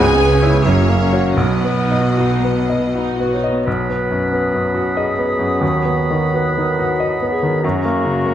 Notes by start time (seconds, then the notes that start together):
Already playing: C#3 G#4 G#5
0.00 C#2 G#3 B3 C#5
0.15 B3
0.19 B3
0.32 C#4
0.42 E4 C#5
0.49 E4
0.64 F#1 F#2 F#3 A#3 C#4 C#5
0.83 A#3
0.89 A#3
1.00 C#4
1.13 F#4 C#5
1.19 F#4
1.37 B1 B2 F#3 B3 B4 D#5
1.59 B3
1.64 B3
1.78 D#4
1.91 D#5
1.99 F#4
2.17 D#4 F#4
2.39 B3
2.44 B3
2.59 F#3
2.70 D#5
2.76 B3
2.95 D#4 F#4
3.15 F#4
3.20 B3
3.32 D#4 C#5
3.44 D#5
3.51 B3
3.65 B1 F#3 B4 B5 D#6
3.90 B3
4.11 F#2
4.32 B3
4.54 F#2
4.75 F#4
4.97 G#4 D#5
5.18 B3
5.39 F#2
5.61 D#2 F#4
5.85 B3
6.11 D#3
6.34 B3 B4
6.58 D#3
6.79 F#4
7.00 D#5
7.22 B3
7.32 G#4
7.43 D#3
7.63 F#2 F#3 F#4 A#5 C#6
7.85 A#3
8.05 C#3
8.26 A#3